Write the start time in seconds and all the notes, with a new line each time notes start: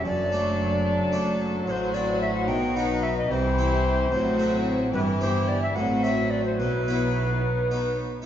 0.05 F#1 F#2 F#3 D4 A4 D5
0.32 A3 D4 F#4
1.12 A3 D4 F#4
1.67 A1 A2 F#4 C5 C#5
1.71 C5
1.94 C4 F#4 D5
2.21 E5
2.35 F#5
2.48 B1 B2 D#4 B4 G5
2.76 B3 D#4 F#4 F#5
3.03 E5
3.18 D#5
3.29 C2 C3 E3 E4 G4 C5
3.58 C4 E4
4.11 A1 A2 F#3 C4 F#4
4.39 A3 C4 F#4
4.93 G1 G2 E3 E4 G4 B4
5.21 B3 E4 G4 C5
5.48 D5
5.62 E5
5.75 A1 A2 F#3 C4 F#4 F#5
6.03 C4 F#4 E5
6.30 D5
6.45 C5
6.59 B1 B2 B3 E4 B4
6.88 B3 E4 F#4
7.42 D#4
7.71 B3 D#4 F#4
8.22 B3